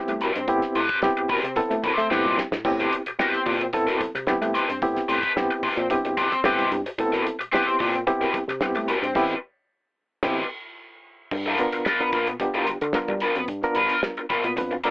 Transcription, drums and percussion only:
0.08 closed hi-hat medium
0.08 high conga medium
0.21 closed hi-hat medium
0.36 closed hi-hat medium
0.48 kick loud
0.48 closed hi-hat medium
0.62 snare soft
0.62 closed hi-hat medium
0.75 closed hi-hat medium
0.89 kick loud
0.89 closed hi-hat medium
1.02 snare loud
1.02 high conga medium
1.17 closed hi-hat soft
1.28 kick loud
1.28 open hi-hat medium
1.28 low conga medium
1.44 closed hi-hat medium
1.56 kick medium
1.56 closed hi-hat loud
1.56 muted conga medium
1.71 closed hi-hat medium
1.84 kick loud
1.84 closed hi-hat medium
1.84 muted conga medium
1.84 low conga medium
1.98 snare soft
1.98 closed hi-hat soft
2.11 snare medium
2.11 high conga medium
2.24 high conga medium
2.38 snare medium
2.52 snare medium
2.65 kick loud
2.65 splash medium
2.80 snare soft
2.80 closed hi-hat soft
2.93 closed hi-hat medium
3.06 closed hi-hat medium
3.19 snare loud
3.19 high conga medium
3.34 closed hi-hat soft
3.46 kick loud
3.46 open hi-hat medium
3.46 low conga medium
3.61 closed hi-hat medium
3.73 kick loud
3.73 closed hi-hat medium
3.73 muted conga medium
3.88 closed hi-hat medium
4.01 kick loud
4.01 closed hi-hat medium
4.01 muted conga medium
4.15 snare soft
4.15 closed hi-hat soft
4.27 snare loud
4.27 high conga medium
4.42 closed hi-hat medium
4.42 high conga medium
4.55 closed hi-hat medium
4.70 closed hi-hat medium
4.82 kick loud
4.82 closed hi-hat medium
4.96 snare soft
4.96 closed hi-hat medium
5.09 closed hi-hat medium
5.09 muted conga soft
5.23 kick medium
5.23 closed hi-hat medium
5.37 snare loud
5.37 high conga medium
5.51 closed hi-hat soft
5.63 kick loud
5.63 open hi-hat medium
5.63 low conga medium
5.77 closed hi-hat medium
5.90 kick loud
5.90 closed hi-hat loud
5.90 muted conga medium
6.05 closed hi-hat medium
6.17 kick loud
6.17 closed hi-hat medium
6.17 muted conga medium
6.17 low conga medium
6.32 snare soft
6.32 closed hi-hat medium
6.44 snare loud
6.44 high conga medium
6.58 closed hi-hat soft
6.58 high conga medium
6.72 closed hi-hat medium
6.86 closed hi-hat medium
6.99 kick loud
6.99 closed hi-hat loud
7.13 snare soft
7.13 closed hi-hat soft
7.26 closed hi-hat medium
7.26 muted conga soft
7.41 closed hi-hat medium
7.53 snare loud
7.53 high conga medium
7.68 closed hi-hat soft
7.80 kick loud
7.80 open hi-hat medium
7.80 low conga medium
7.95 closed hi-hat medium
8.07 kick loud
8.07 closed hi-hat medium
8.07 muted conga medium
8.22 closed hi-hat soft
8.34 kick loud
8.34 closed hi-hat medium
8.34 muted conga medium
8.49 snare soft
8.49 closed hi-hat soft
8.61 snare loud
8.61 high conga medium
8.75 closed hi-hat medium
8.75 high conga medium
8.88 closed hi-hat medium
9.04 closed hi-hat medium
9.15 kick loud
9.15 snare loud
9.15 crash medium
10.23 kick loud
10.23 snare loud
10.23 crash medium
11.31 kick medium
11.31 crash medium
11.58 closed hi-hat medium
11.73 closed hi-hat medium
11.86 snare loud
11.86 high conga medium
12.00 closed hi-hat soft
12.13 kick loud
12.13 closed hi-hat medium
12.27 closed hi-hat medium
12.40 kick loud
12.40 closed hi-hat medium
12.40 muted conga medium
12.54 closed hi-hat soft
12.67 closed hi-hat medium
12.67 muted conga medium
12.81 closed hi-hat soft
12.93 snare loud
12.93 high conga medium
13.08 kick medium
13.08 closed hi-hat soft
13.08 high conga medium
13.20 closed hi-hat medium
13.36 closed hi-hat medium
13.48 kick medium
13.48 closed hi-hat medium
13.62 snare soft
13.75 closed hi-hat medium
13.89 closed hi-hat medium
14.03 snare loud
14.03 high conga medium
14.17 closed hi-hat soft
14.30 kick loud
14.30 closed hi-hat medium
14.30 low conga medium
14.44 closed hi-hat medium
14.57 kick medium
14.57 closed hi-hat loud
14.57 muted conga medium
14.71 closed hi-hat soft
14.84 closed hi-hat medium
14.84 muted conga medium

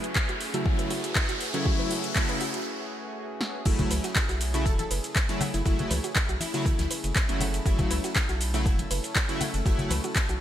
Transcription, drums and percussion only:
0.04 closed hi-hat medium
0.16 kick loud
0.16 clap loud
0.29 closed hi-hat soft
0.41 open hi-hat loud
0.54 closed hi-hat medium
0.66 kick loud
0.79 closed hi-hat medium
0.91 open hi-hat loud
1.04 closed hi-hat medium
1.16 kick loud
1.16 clap loud
1.29 closed hi-hat medium
1.41 open hi-hat loud
1.54 closed hi-hat medium
1.66 kick loud
1.91 open hi-hat loud
2.04 closed hi-hat medium
2.16 kick loud
2.16 clap loud
2.29 closed hi-hat soft
2.41 open hi-hat loud
2.54 closed hi-hat medium
3.41 snare medium
3.65 kick loud
3.65 closed hi-hat medium
3.65 crash loud
3.65 ride medium
3.65 shaker soft
3.79 kick medium
3.79 closed hi-hat soft
3.79 low conga loud
3.90 closed hi-hat medium
3.90 open hi-hat loud
3.90 ride medium
3.90 shaker medium
4.03 snare soft
4.03 closed hi-hat medium
4.03 shaker soft
4.16 kick loud
4.16 snare loud
4.16 clap loud
4.16 closed hi-hat medium
4.16 ride medium
4.16 shaker soft
4.29 snare soft
4.29 closed hi-hat soft
4.29 shaker soft
4.41 closed hi-hat medium
4.41 open hi-hat loud
4.41 ride medium
4.41 shaker medium
4.54 closed hi-hat medium
4.54 shaker soft
4.66 kick loud
4.66 closed hi-hat medium
4.66 ride medium
4.66 shaker soft
4.79 closed hi-hat medium
4.79 high conga medium
4.91 closed hi-hat medium
4.91 open hi-hat loud
4.91 ride medium
4.91 shaker medium
5.04 closed hi-hat medium
5.04 shaker soft
5.15 kick loud
5.15 snare loud
5.15 clap loud
5.15 closed hi-hat medium
5.15 ride medium
5.15 shaker soft
5.29 snare medium
5.29 closed hi-hat medium
5.41 closed hi-hat medium
5.41 open hi-hat loud
5.41 ride medium
5.41 low conga loud
5.41 shaker medium
5.54 closed hi-hat medium
5.54 closed hi-hat soft
5.54 shaker soft
5.65 kick loud
5.65 closed hi-hat medium
5.65 ride medium
5.65 shaker soft
5.79 closed hi-hat soft
5.79 low conga loud
5.90 closed hi-hat medium
5.90 open hi-hat loud
5.90 ride medium
5.90 high conga loud
5.90 shaker medium
6.04 closed hi-hat medium
6.04 shaker soft
6.15 kick loud
6.15 snare loud
6.15 clap loud
6.15 closed hi-hat medium
6.15 ride medium
6.15 shaker soft
6.29 closed hi-hat soft
6.29 shaker soft
6.40 open hi-hat medium
6.40 open hi-hat loud
6.40 ride medium
6.40 high conga medium
6.40 shaker medium
6.54 closed hi-hat medium
6.54 shaker soft
6.66 kick loud
6.66 closed hi-hat medium
6.66 ride medium
6.66 shaker soft
6.79 snare medium
6.79 closed hi-hat medium
6.79 high conga medium
6.90 closed hi-hat medium
6.90 open hi-hat loud
6.90 ride medium
6.90 shaker medium
7.04 closed hi-hat medium
7.04 shaker soft
7.15 kick loud
7.15 snare loud
7.15 clap loud
7.15 closed hi-hat medium
7.15 ride medium
7.15 shaker soft
7.29 closed hi-hat medium
7.40 closed hi-hat medium
7.40 open hi-hat loud
7.40 ride medium
7.40 low conga loud
7.40 shaker medium
7.54 closed hi-hat soft
7.54 closed hi-hat medium
7.54 shaker soft
7.66 kick loud
7.66 closed hi-hat medium
7.66 ride medium
7.66 shaker soft
7.79 kick medium
7.79 closed hi-hat soft
7.79 low conga loud
7.91 closed hi-hat medium
7.91 open hi-hat loud
7.91 ride medium
7.91 shaker medium
8.04 snare soft
8.04 closed hi-hat medium
8.04 shaker soft
8.16 kick loud
8.16 snare loud
8.16 clap loud
8.16 closed hi-hat loud
8.16 ride medium
8.16 shaker soft
8.29 snare soft
8.29 closed hi-hat soft
8.29 shaker soft
8.41 closed hi-hat medium
8.41 open hi-hat loud
8.41 ride medium
8.41 shaker medium
8.54 closed hi-hat medium
8.54 shaker soft
8.66 kick loud
8.66 closed hi-hat medium
8.66 ride medium
8.66 shaker soft
8.79 closed hi-hat medium
8.79 high conga medium
8.91 closed hi-hat medium
8.91 open hi-hat loud
8.91 ride medium
8.91 shaker medium
9.04 closed hi-hat medium
9.04 shaker soft
9.15 kick loud
9.15 snare loud
9.15 clap loud
9.15 closed hi-hat medium
9.15 shaker soft
9.29 snare medium
9.29 closed hi-hat medium
9.40 closed hi-hat medium
9.40 open hi-hat loud
9.40 ride medium
9.40 low conga medium
9.40 shaker medium
9.54 closed hi-hat medium
9.54 closed hi-hat soft
9.54 shaker soft
9.66 kick loud
9.66 closed hi-hat medium
9.66 ride medium
9.66 shaker soft
9.79 closed hi-hat soft
9.79 low conga loud
9.90 closed hi-hat medium
9.90 open hi-hat loud
9.90 ride medium
9.90 high conga loud
9.90 shaker medium
10.04 closed hi-hat medium
10.04 shaker soft
10.15 kick loud
10.15 snare loud
10.15 clap loud
10.15 closed hi-hat medium
10.15 ride medium
10.15 shaker soft
10.29 closed hi-hat soft
10.29 shaker soft

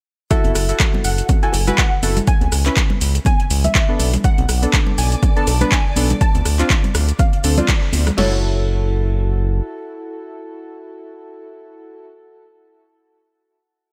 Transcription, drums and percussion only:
0.31 kick loud
0.31 closed hi-hat medium
0.31 shaker soft
0.44 closed hi-hat soft
0.44 high conga loud
0.55 cross-stick medium
0.55 open hi-hat loud
0.55 shaker medium
0.69 closed hi-hat medium
0.69 shaker soft
0.80 kick loud
0.80 clap loud
0.80 closed hi-hat medium
0.80 shaker soft
0.94 high conga medium
0.94 low conga medium
1.04 open hi-hat loud
1.04 shaker medium
1.18 closed hi-hat medium
1.18 shaker soft
1.29 kick loud
1.29 closed hi-hat medium
1.29 high conga medium
1.29 shaker soft
1.43 closed hi-hat soft
1.53 open hi-hat loud
1.53 high bongo medium
1.53 shaker medium
1.67 closed hi-hat medium
1.67 high conga medium
1.67 low conga medium
1.67 shaker soft
1.78 kick loud
1.78 clap loud
1.78 closed hi-hat medium
1.78 shaker soft
2.03 open hi-hat loud
2.03 high conga medium
2.03 shaker medium
2.17 closed hi-hat medium
2.17 low conga medium
2.17 shaker soft
2.27 kick loud
2.27 closed hi-hat medium
2.27 shaker soft
2.41 closed hi-hat soft
2.41 high conga loud
2.52 cross-stick medium
2.52 open hi-hat loud
2.52 shaker medium
2.66 clap soft
2.66 closed hi-hat medium
2.66 high bongo soft
2.66 shaker soft
2.77 kick loud
2.77 clap loud
2.77 closed hi-hat medium
2.77 shaker soft
2.90 high conga medium
2.90 low conga medium
3.01 open hi-hat loud
3.01 shaker medium
3.15 closed hi-hat medium
3.15 high bongo soft
3.15 shaker soft
3.25 kick loud
3.25 closed hi-hat medium
3.25 high conga loud
3.25 shaker soft
3.40 closed hi-hat soft
3.50 open hi-hat loud
3.50 shaker medium
3.64 closed hi-hat medium
3.64 high conga medium
3.64 low conga medium
3.64 shaker soft
3.75 kick loud
3.75 clap loud
3.75 closed hi-hat medium
3.75 shaker soft
3.99 open hi-hat loud
3.99 high bongo soft
3.99 high conga loud
3.99 shaker medium
4.14 closed hi-hat medium
4.14 low conga medium
4.14 shaker soft
4.24 kick loud
4.24 closed hi-hat medium
4.24 shaker soft
4.38 closed hi-hat soft
4.38 high conga loud
4.49 cross-stick medium
4.49 open hi-hat loud
4.49 shaker medium
4.63 closed hi-hat medium
4.63 shaker soft
4.73 kick loud
4.73 clap loud
4.73 closed hi-hat medium
4.73 shaker soft
4.86 high conga medium
4.86 low conga medium
4.98 open hi-hat loud
4.98 shaker medium
5.12 closed hi-hat medium
5.12 shaker soft
5.23 kick loud
5.23 closed hi-hat medium
5.23 high conga medium
5.23 shaker soft
5.37 closed hi-hat soft
5.47 open hi-hat loud
5.47 high bongo medium
5.47 shaker medium
5.61 closed hi-hat medium
5.61 high conga medium
5.61 low conga medium
5.61 shaker soft
5.72 kick loud
5.72 clap loud
5.72 closed hi-hat medium
5.72 shaker soft
5.96 open hi-hat loud
5.96 high conga loud
5.96 shaker medium
6.10 closed hi-hat medium
6.10 low conga loud
6.10 shaker soft
6.21 kick loud
6.21 closed hi-hat medium
6.21 shaker soft
6.35 closed hi-hat soft
6.35 high conga medium
6.35 shaker soft
6.45 cross-stick medium
6.45 open hi-hat loud
6.45 shaker medium
6.59 clap soft
6.59 closed hi-hat soft
6.59 high bongo soft
6.59 shaker soft
6.70 kick loud
6.70 clap loud
6.70 closed hi-hat medium
6.70 shaker soft
6.84 closed hi-hat soft
6.84 high conga medium
6.84 low conga medium
6.95 cross-stick medium
6.95 open hi-hat loud
6.95 shaker medium
7.08 closed hi-hat medium
7.08 high bongo soft
7.08 shaker soft
7.19 kick loud
7.19 closed hi-hat medium
7.19 high conga loud
7.19 shaker soft
7.33 closed hi-hat soft
7.44 open hi-hat loud
7.44 shaker medium
7.58 closed hi-hat soft
7.58 high conga medium
7.58 low conga medium
7.58 shaker soft
7.68 kick loud
7.68 clap loud
7.68 closed hi-hat medium
7.68 shaker soft
7.93 open hi-hat loud
7.93 high bongo soft
7.93 high conga loud
7.93 shaker medium
8.07 cross-stick medium
8.07 closed hi-hat medium
8.07 low conga medium
8.07 shaker soft
8.18 snare loud
8.18 crash medium

